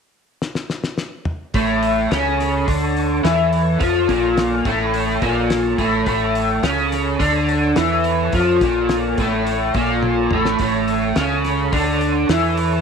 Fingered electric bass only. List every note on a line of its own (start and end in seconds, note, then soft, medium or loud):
1.54 2.07 A1 medium
2.12 2.64 C#2 medium
2.68 3.21 D2 medium
3.24 3.77 E2 medium
3.81 4.07 F2 medium
4.09 4.62 A#1 loud
4.65 5.18 A1 medium
5.22 5.75 A#1 medium
5.78 6.05 A1 medium
6.07 6.60 A1 medium
6.63 7.16 C#2 medium
7.20 7.73 D2 medium
7.78 8.30 E2 loud
8.33 8.60 F2 medium
8.61 9.14 A#1 medium
9.18 9.71 A1 loud
9.75 10.27 A#1 medium
10.32 10.58 A1 medium
10.60 11.12 A1 medium
11.16 11.69 C#2 loud
11.73 12.26 D2 loud
12.29 12.81 E2 medium